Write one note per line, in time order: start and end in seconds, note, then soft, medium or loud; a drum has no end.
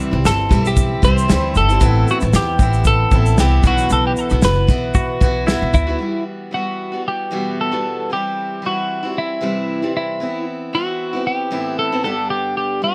0.00 0.12 C3 medium
0.00 0.12 E3 medium
0.00 0.13 G3 medium
0.00 0.12 C4 medium
0.00 shaker soft
0.11 0.22 C2 medium
0.11 0.49 G3 soft
0.11 0.50 C4 medium
0.11 0.50 E4 soft
0.25 0.52 G1 loud
0.25 0.67 A4 medium
0.25 snare loud
0.25 shaker medium
0.49 0.94 B1 medium
0.49 1.02 E3 medium
0.49 1.02 G3 medium
0.49 1.04 C4 medium
0.49 1.05 E4 medium
0.49 kick medium
0.49 snare soft
0.49 shaker medium
0.65 1.02 G4 medium
0.65 shaker soft
0.77 kick loud
0.77 shaker medium
1.02 1.24 C2 medium
1.02 1.27 E3 medium
1.02 1.28 G3 medium
1.02 1.29 C4 medium
1.02 1.30 E4 medium
1.02 1.57 C5 loud
1.02 kick loud
1.02 shaker medium
1.18 shaker medium
1.28 1.57 D2 medium
1.28 1.69 E3 medium
1.28 1.70 G3 medium
1.28 1.69 C4 medium
1.28 1.67 E4 medium
1.28 snare loud
1.28 shaker medium
1.55 1.77 G1 medium
1.55 2.10 A4 loud
1.55 shaker medium
1.69 1.81 G3 soft
1.69 1.80 C4 medium
1.69 1.81 E4 medium
1.69 shaker medium
1.80 2.02 A1 medium
1.80 2.21 A2 medium
1.80 2.22 E3 medium
1.80 2.21 B3 medium
1.80 2.22 C4 medium
1.80 2.19 E4 medium
1.80 kick loud
1.80 shaker medium
2.08 2.18 F#4 medium
2.08 shaker soft
2.21 2.32 A1 loud
2.21 2.60 B3 medium
2.21 2.59 C4 soft
2.21 2.59 E4 medium
2.21 shaker soft
2.33 2.55 E2 medium
2.33 2.87 G4 medium
2.33 snare loud
2.33 shaker medium
2.59 3.02 A1 medium
2.59 3.11 E3 medium
2.59 3.14 B3 medium
2.59 3.11 C4 medium
2.59 3.14 E4 medium
2.59 kick medium
2.59 shaker medium
2.73 shaker soft
2.84 3.40 A4 loud
2.84 kick medium
2.84 shaker medium
3.11 3.38 A1 medium
3.11 3.36 E3 medium
3.11 3.39 B3 medium
3.11 3.38 C4 medium
3.11 3.40 E4 medium
3.11 kick medium
3.11 shaker medium
3.26 shaker medium
3.38 3.59 C2 medium
3.38 3.64 E3 medium
3.38 3.64 B3 medium
3.38 3.65 C4 medium
3.38 3.64 E4 medium
3.38 3.66 G4 medium
3.38 snare loud
3.38 shaker medium
3.63 3.85 B1 loud
3.63 4.31 B2 medium
3.63 4.33 E3 medium
3.63 4.33 B3 medium
3.63 4.31 E4 medium
3.63 4.29 F#4 medium
3.63 kick loud
3.63 shaker medium
3.67 3.90 F#4 medium
3.78 shaker medium
3.90 4.12 B1 loud
3.90 4.05 A4 medium
3.90 shaker medium
4.07 4.12 G4 medium
4.17 4.44 A4 medium
4.17 shaker soft
4.30 4.41 B1 medium
4.30 4.67 B3 soft
4.30 4.69 E4 soft
4.30 4.68 F#4 medium
4.30 shaker soft
4.42 4.64 F#1 loud
4.42 5.45 B4 medium
4.42 snare loud
4.42 shaker medium
4.67 4.90 B1 medium
4.67 5.20 E3 medium
4.67 5.21 B3 medium
4.67 5.22 E4 medium
4.67 5.23 F#4 medium
4.67 kick medium
4.67 snare soft
4.67 shaker medium
4.94 5.16 B2 medium
4.94 5.44 F#4 loud
4.94 kick loud
4.94 shaker medium
5.21 5.55 B1 medium
5.21 5.45 E3 medium
5.21 5.46 B3 medium
5.21 5.48 E4 medium
5.21 5.48 F#4 medium
5.21 kick loud
5.21 shaker medium
5.46 5.88 E3 medium
5.46 5.88 B3 medium
5.46 5.87 E4 medium
5.46 5.86 F#4 medium
5.46 snare loud
5.46 shaker medium
5.62 5.72 B1 medium
5.74 5.95 D2 medium
5.74 6.23 E4 loud
5.74 kick medium
5.74 shaker medium
5.87 5.99 B3 medium
5.87 6.00 E4 medium
5.87 5.99 F#4 medium
5.99 6.51 E3 soft
5.99 6.52 G3 soft
5.99 6.52 B3 soft
5.99 6.53 F#4 soft
6.51 6.92 E3 soft
6.51 6.93 G3 soft
6.51 6.92 B3 soft
6.51 6.91 F#4 soft
6.51 7.02 F#4 medium
6.92 7.30 E3 soft
6.92 7.31 G3 soft
6.92 7.31 B3 soft
6.92 7.31 F#4 soft
7.08 7.61 G4 medium
7.31 7.72 E2 medium
7.31 7.72 B2 medium
7.31 7.72 E3 medium
7.31 7.72 G3 medium
7.31 7.71 B3 medium
7.31 7.70 F#4 medium
7.61 8.13 A4 medium
7.72 8.11 E2 soft
7.72 8.11 B2 soft
7.72 8.08 E3 soft
7.72 8.10 G3 soft
7.72 8.10 B3 medium
7.72 8.10 F#4 medium
8.10 8.62 E3 soft
8.10 8.62 G3 medium
8.10 8.64 C4 soft
8.10 8.65 E4 medium
8.10 8.66 G4 medium
8.62 9.03 E3 soft
8.62 9.04 G3 soft
8.62 9.04 C4 soft
8.62 9.02 E4 medium
8.66 9.19 F#4 medium
9.03 9.41 G3 soft
9.03 9.41 C4 soft
9.03 9.41 E4 soft
9.18 9.92 E4 medium
9.41 9.82 C3 medium
9.41 9.82 E3 medium
9.41 9.83 G3 medium
9.41 9.82 C4 medium
9.41 9.81 E4 medium
9.82 10.22 C3 soft
9.82 10.19 E3 soft
9.82 10.21 G3 medium
9.82 10.20 C4 medium
9.82 10.20 E4 medium
9.97 10.44 E4 medium
10.20 10.72 E3 medium
10.20 10.75 B3 medium
10.20 10.73 C4 medium
10.20 10.74 E4 medium
10.73 11.14 E3 soft
10.73 11.14 B3 medium
10.73 11.14 C4 soft
10.73 11.12 E4 soft
10.73 11.27 F#4 medium
11.13 11.51 B3 soft
11.13 11.51 C4 soft
11.13 11.51 E4 soft
11.27 11.79 G4 medium
11.51 11.92 A2 medium
11.51 11.92 E3 medium
11.51 11.91 B3 medium
11.51 11.92 C4 medium
11.51 11.91 E4 medium
11.79 12.03 A4 medium
11.92 12.04 A2 soft
11.92 12.05 E3 soft
11.92 12.04 B3 medium
11.92 12.05 C4 medium
11.92 12.04 E4 medium
12.04 12.83 G2 medium
12.04 12.83 D3 medium
12.04 12.81 G3 medium
12.04 12.83 B3 medium
12.04 12.83 D4 medium
12.04 12.95 G4 medium
12.04 12.29 A4 medium
12.30 12.56 G4 medium
12.57 12.83 G4 medium
12.82 12.95 G3 soft
12.82 12.95 B3 soft
12.82 12.95 D4 soft
12.82 12.95 F#4 medium